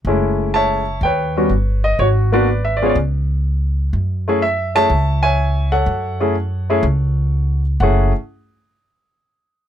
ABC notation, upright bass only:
X:1
M:4/4
L:1/8
Q:"Swing" 1/4=124
K:F#m
V:1 name="Upright bass" clef=bass
F,,,4 ^D,,2 =G,,,2 | G,,,4 C,,4 | F,,4 C,,4 | F,,4 C,,4 |
F,,, z6 z |]